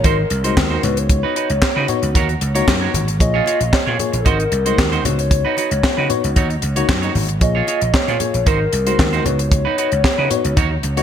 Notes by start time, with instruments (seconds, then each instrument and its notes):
0.04 slap bass G#1, clean electric guitar D#4 F#4 C5, soft synth lead A#4, kick, closed hi-hat, high conga
0.18 muted clean electric guitar stroke
0.30 slap bass C2, muted clean electric guitar stroke, closed hi-hat
0.44 fm electric piano G#3 D#4 F#4 C5, clean electric guitar D#4 F#4 C5, closed hi-hat
0.57 slap bass D#2, kick, snare, clap, muted conga, high conga
0.70 clean electric guitar D#4 F#4 C5
0.83 slap bass C#2, fm electric piano B3 D#4 F#4 C#5, soft synth lead B4, muted clean electric guitar stroke, closed hi-hat, high conga, low conga
0.97 soft synth lead C#5, muted clean electric guitar stroke, closed hi-hat
1.09 muted clean electric guitar stroke, kick, closed hi-hat
1.23 clean electric guitar D#4 F#4 B4
1.36 clean electric guitar D#4 F#4 B4, closed hi-hat
1.50 slap bass C#2, muted clean electric guitar stroke, closed hi-hat
1.62 muted clean electric guitar stroke, muted slap bass stroke, kick, snare, clap
1.76 slap bass C#3, clean electric guitar D#4 F#4 B4
1.88 fm electric piano B3 D#4 F#4 C#5, muted clean electric guitar stroke, closed hi-hat, low conga
2.02 slap bass C#2, muted clean electric guitar stroke, closed hi-hat
2.15 slap bass D#2, clean electric guitar F#4 A#4 C#5, kick, closed hi-hat, muted conga, high conga
2.29 muted clean electric guitar stroke, closed hi-hat
2.41 slap bass C#2, muted clean electric guitar stroke, closed hi-hat, muted conga
2.55 fm electric piano A#3 D#4 F#4 C#5, clean electric guitar F#4 A#4 C#5, closed hi-hat
2.68 slap bass F#2, kick, snare, clap, high conga
2.81 clean electric guitar F#4 A#4 C#5
2.94 slap bass G#1, muted clean electric guitar stroke, closed hi-hat, muted conga, high conga, low conga
3.08 muted clean electric guitar stroke, closed hi-hat
3.20 slap bass A#1, fm electric piano A#3 F4 G#4 C#5, soft synth lead D#5, muted clean electric guitar stroke, kick, closed hi-hat, muted conga
3.34 clean electric guitar F4 G#4 C#5
3.46 clean electric guitar F4 G#4 C#5, closed hi-hat, muted conga
3.60 slap bass A#1, muted clean electric guitar stroke, closed hi-hat
3.73 soft synth lead C#5, muted clean electric guitar stroke, muted slap bass stroke, kick, snare, clap, muted conga
3.86 slap bass A#2, clean electric guitar F4 G#4 C#5
3.99 fm electric piano A#3 F4 G#4 C#5, muted clean electric guitar stroke, closed hi-hat, low conga
4.13 slap bass A#1, muted clean electric guitar stroke, closed hi-hat
4.20 soft synth lead A4
4.25 slap bass G#1, clean electric guitar D#4 F#4 C5, soft synth lead A#4, kick, closed hi-hat, muted conga, high conga
4.39 muted clean electric guitar stroke, closed hi-hat
4.52 slap bass C2, muted clean electric guitar stroke, closed hi-hat
4.66 fm electric piano G#3 D#4 F#4 C5, clean electric guitar D#4 F#4 C5, closed hi-hat
4.78 slap bass D#2, muted clean electric guitar stroke, kick, snare, clap, muted conga, high conga
4.92 clean electric guitar D#4 F#4 C5, closed hi-hat
5.05 slap bass C#2, fm electric piano B3 D#4 F#4 C#5, soft synth lead B4, closed hi-hat, high conga, low conga
5.19 soft synth lead C#5, muted clean electric guitar stroke, closed hi-hat
5.31 muted clean electric guitar stroke, kick, closed hi-hat, muted conga
5.45 clean electric guitar D#4 F#4 B4
5.57 clean electric guitar D#4 F#4 B4, closed hi-hat, muted conga
5.71 slap bass C#2, muted clean electric guitar stroke, closed hi-hat
5.83 muted clean electric guitar stroke, muted slap bass stroke, kick, snare, clap
5.97 slap bass C#3, clean electric guitar D#4 F#4 B4
6.09 fm electric piano B3 D#4 F#4 C#5, muted clean electric guitar stroke, closed hi-hat, muted conga, low conga
6.23 slap bass C#2, muted clean electric guitar stroke, closed hi-hat
6.36 slap bass D#2, clean electric guitar D#4 F#4 C#5, kick, closed hi-hat, high conga
6.50 muted clean electric guitar stroke, closed hi-hat
6.62 slap bass C#2, muted clean electric guitar stroke, closed hi-hat
6.76 fm electric piano A#3 D#4 F#4 C#5, clean electric guitar D#4 F#4 C#5, closed hi-hat, high conga
6.88 slap bass F#2, muted clean electric guitar stroke, kick, snare, clap, muted conga, high conga
7.02 clean electric guitar D#4 F#4 C#5, closed hi-hat
7.15 slap bass G#1, muted clean electric guitar stroke, open hi-hat, muted conga, high conga, low conga
7.29 muted clean electric guitar stroke, closed hi-hat
7.41 slap bass A#1, fm electric piano A#3 F4 G#4 C#5, soft synth lead D#5, muted clean electric guitar stroke, kick, closed hi-hat
7.55 clean electric guitar F4 G#4 C#5
7.67 clean electric guitar F4 G#4 C#5, closed hi-hat, muted conga
7.81 slap bass A#1, muted clean electric guitar stroke, closed hi-hat
7.93 soft synth lead C#5, muted clean electric guitar stroke, muted slap bass stroke, kick, snare, clap, muted conga
8.07 slap bass A#2, clean electric guitar F4 G#4 C#5, closed hi-hat
8.19 fm electric piano A#3 F4 G#4 C#5, muted clean electric guitar stroke, closed hi-hat, muted conga, low conga
8.34 slap bass A#1, muted clean electric guitar stroke, closed hi-hat
8.46 slap bass G#1, clean electric guitar D#4 F#4 C5, soft synth lead A#4, kick, closed hi-hat, muted conga, high conga
8.60 muted clean electric guitar stroke
8.73 slap bass C2, muted clean electric guitar stroke, closed hi-hat
8.86 fm electric piano G#3 D#4 F#4 C5, clean electric guitar D#4 F#4 C5, closed hi-hat
8.99 slap bass D#2, kick, snare, clap, muted conga, high conga
9.13 clean electric guitar D#4 F#4 C5, closed hi-hat
9.25 slap bass C#2, fm electric piano B3 D#4 F#4 C#5, soft synth lead B4, muted clean electric guitar stroke, closed hi-hat, high conga, low conga
9.39 soft synth lead C#5, muted clean electric guitar stroke, closed hi-hat
9.52 muted clean electric guitar stroke, kick, closed hi-hat
9.65 clean electric guitar D#4 F#4 B4
9.78 clean electric guitar D#4 F#4 B4, closed hi-hat
9.92 slap bass C#2, muted clean electric guitar stroke, closed hi-hat
10.04 muted clean electric guitar stroke, muted slap bass stroke, kick, snare, clap
10.18 slap bass C#3, clean electric guitar D#4 F#4 B4
10.30 fm electric piano B3 D#4 F#4 C#5, muted clean electric guitar stroke, closed hi-hat, low conga
10.44 slap bass C#2, muted clean electric guitar stroke, closed hi-hat
10.57 slap bass D#2, clean electric guitar D#4 F#4 C#5, kick, closed hi-hat, muted conga, high conga
10.71 muted clean electric guitar stroke
10.83 slap bass C#2, muted clean electric guitar stroke, closed hi-hat, muted conga
10.97 fm electric piano A#3 D#4 F#4 C#5, clean electric guitar D#4 F#4 C#5, closed hi-hat